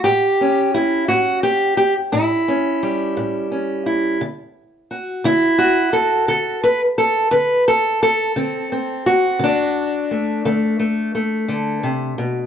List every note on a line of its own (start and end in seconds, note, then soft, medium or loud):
0.04 0.67 A2 medium
0.04 0.73 G4 loud
0.41 2.47 C#4 soft
0.74 1.08 E4 medium
1.08 1.71 A2 medium
1.08 1.43 F#4 medium
1.43 1.76 G4 medium
1.77 1.93 G4 medium
2.12 2.75 A2 medium
2.12 3.85 E4 medium
2.48 3.50 C#4 soft
2.83 4.21 G3 soft
3.17 3.79 A2 medium
3.51 4.16 C#4 soft
3.86 4.21 E4 soft
4.21 4.83 D3 medium
4.91 5.58 F#4 soft
5.24 5.87 D3 medium
5.24 5.92 E4 loud
5.58 6.63 F#4 medium
5.93 6.27 A4 medium
6.28 6.91 D3 medium
6.28 6.63 A4 medium
6.64 6.80 B4 loud
6.98 7.31 A4 loud
7.31 7.95 D3 medium
7.31 7.66 B4 loud
7.68 8.01 A4 medium
8.03 9.06 A4 loud
8.36 8.99 D3 medium
8.36 8.71 C4 medium
8.72 9.41 C4 soft
9.06 10.10 F#4 medium
9.39 10.02 D3 medium
9.44 12.46 D4 medium
10.11 10.45 A3 soft
10.45 11.07 D3 medium
10.45 10.79 A3 medium
10.79 11.14 A3 medium
11.15 12.46 A3 soft
11.48 11.83 D3 medium
11.83 12.18 C3 medium
12.18 12.46 B2 medium